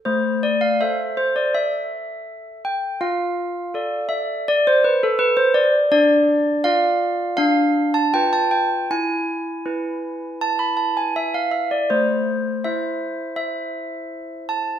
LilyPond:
\new Staff \with { instrumentName = "Handbells" } { \time 4/4 \key a \minor \tempo 4 = 81 << { c''8 d''16 f''16 e''8 c''16 d''16 e''4. g''8 | f''4. e''8 d''16 c''16 b'16 a'16 b'16 c''16 d''8 | d''4 f''4 f''8. a''16 g''16 a''16 g''8 | gis''2 a''16 b''16 a''16 gis''16 e''16 f''16 e''16 d''16 |
c''4 e''4 e''4. a''8 | } \\ { a4 <a' c''>2. | f'4 <a' d''>2. | d'4 <f' d''>4 d'4 <f' b'>4 | e'4 <e' b'>2. |
a4 <e' c''>2. | } >> }